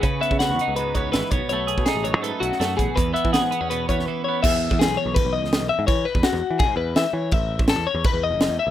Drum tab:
CC |----------------|----------------|----------------|x---x---x---x---|
HH |x-x-x-x-x-x-x-x-|x-x-x-x-x-x-x-x-|x-x-x-x-x-x-----|----------------|
SD |----o-------o---|----o------oo---|----o------o----|----o------oo---|
BD |o--o------o---o-|---o----------o-|o--o------o-----|o--o----o-------|

CC |x---x---x---x---|x---x---x---x---|
HH |----------------|----------------|
SD |----o-------o---|----o-------o---|
BD |o--o----o-------|o--o----o-------|